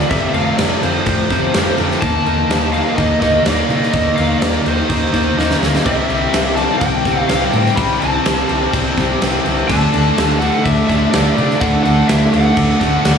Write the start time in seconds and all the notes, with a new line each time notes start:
Already playing: C3 F3
0.10 F1 F2 C3 F3 E5, kick, crash
0.34 F1 F2 C3 F3 F5, crash
0.58 F1 F2 C3 F3 D5, snare, crash
0.82 F1 F2 C3 F3 C5, crash
1.06 F1 F2 C3 F3, kick, crash
1.30 F1 F2 C3 F3, kick, snare, crash
1.54 F1 F2 C3 F3, snare, crash
1.78 F1 F2 C3 F3, crash
1.91 snare
2.02 D#2 D#3 A#3 D#4 A5, kick, crash
2.26 D#2 D#3 A#3 D#4, crash
2.50 D#2 D#3 A#3 D#4, snare, crash
2.73 D#3 A#3 D#4 F5, crash
2.96 D#2 D#3 A#3 D#4 D#5, kick, crash
3.20 D#2 D#3 A#3 D#4 D#5, kick, snare, crash
3.45 D#2 D#3 A#3 D#4 D5, snare, crash
3.69 C3 D#3 A#3 D#4, crash
3.82 snare
3.91 D#2 D#3 D#5, kick, crash
3.96 A#3 D#4
4.16 D#2 D#3 A#3 D#4 F5, crash
4.39 D#2 D#3 A#3 D5, snare, crash
4.43 D#4
4.65 D#2 D#3 A#3 D#4 C5, crash
4.89 D#2 D#3 A#3 D#4, kick, crash
5.13 D#2 D#3 A#3 D#4, kick, crash
5.37 D#2 D#3 A#3 D#4, snare
5.51 snare
5.61 D2 D#3 A#3 D#4, snare
5.75 snare
5.85 C2 C3 G3 C4 E5, kick, crash
6.08 C2 C3 G3 C4, crash
6.33 C2 C3 G3 C4, snare, crash
6.55 C3 G3 C4 A5, crash
6.78 C2 C3 G3 G5, kick, crash
6.82 C4
7.05 C2 C3 G3 C4, kick, snare, crash
7.28 C2 C3 G3 C4 F5, snare, crash
7.51 A2 C3 G3 C4 G5, crash
7.66 snare
7.76 C2 C3 G3 C4 B5, kick, crash
8.00 C2 C3 G3 C4 A5, crash
8.25 C2 C3 G3 C4, snare, crash
8.48 C2 C3 G3 C4, crash
8.73 C2 C3 G3 C4, kick, crash
8.97 C2 C3 G3 C4, kick, snare, crash
9.21 C2 C3 G3 C4, snare, crash
9.45 C2 C3 G3 C4, crash
9.68 D2 D3 A3 D4 A5, kick, crash
9.93 D2 D3 A3 D4, crash
10.17 D2 D3 A3 D4, snare, crash
10.39 D3 A3 D4 F#5, crash
10.64 D2 D3 A3 D4 E5, kick, crash
10.88 D2 D3 A3 D4 E5, kick, snare, crash
11.11 D3 A3 D4 D5, snare, crash
11.15 D2
11.37 C3 D3 A3 D4, crash
11.50 snare
11.60 D2 D3 A3 D4 F#5, kick, crash
11.83 D2 D3 A3 D4 F#5, crash
12.07 D2 D3 A3 D4 E5, snare, crash
12.32 D2 D3 A3 D4 F#5, crash
12.56 D2 D3 A3 D4, kick, crash
12.79 D2 D3 A3 D4, kick, snare, crash
13.04 D2 D3 A3 D4, snare, crash